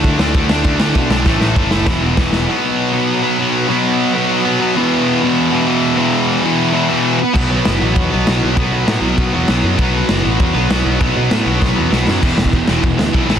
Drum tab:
CC |x---x---x---x---|----------------|----------------|----------------|
RD |----------------|----------------|----------------|----------------|
SD |--o---o---o---o-|o-o---o-o---o-o-|----------------|----------------|
BD |o---o---o---o---|o---o---o---o---|----------------|----------------|

CC |----------------|----------------|x---------------|----------------|
RD |----------------|----------------|----x---x---x---|x---x---x---x---|
SD |----------------|----------------|----o-------o---|----o-------o---|
BD |----------------|----------------|o-------o-------|o-------o-------|

CC |----------------|----------------|x---x---x---x---|
RD |x---x---x---x---|x---x-----------|----------------|
SD |----o-------o---|----o---o---o-o-|--o---o---o---o-|
BD |o-------o-------|o-------o-------|o--oo---o---o---|